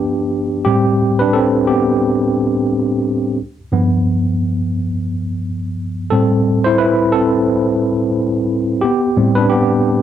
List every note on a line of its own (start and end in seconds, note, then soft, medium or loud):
0.00 0.27 B3 medium
0.00 0.67 D4 medium
0.00 0.26 G4 medium
0.00 0.67 B4 medium
0.65 1.13 A2 medium
0.65 1.13 G3 soft
0.65 1.16 C4 medium
0.65 1.21 G4 medium
1.19 1.27 D4 medium
1.19 1.25 B4 medium
1.33 1.50 C4 medium
1.33 1.49 A4 medium
1.67 3.01 B3 medium
1.67 3.00 G4 medium
3.72 4.70 G2 medium
3.72 4.70 F3 medium
3.72 4.71 B3 medium
6.10 6.58 A2 medium
6.10 6.59 G3 soft
6.10 6.59 C4 medium
6.10 6.61 A4 medium
6.64 6.78 E4 medium
6.64 6.79 C5 medium
6.78 7.11 E4 medium
6.78 7.14 B4 loud
7.12 8.46 C4 medium
7.12 8.45 A4 medium
8.81 9.34 B3 medium
8.81 9.38 G4 medium
9.16 10.02 A2 medium
9.16 10.02 G3 medium
9.16 10.02 C4 medium
9.35 9.50 D4 medium
9.35 9.51 B4 medium
9.50 10.02 B3 medium
9.50 10.02 G4 medium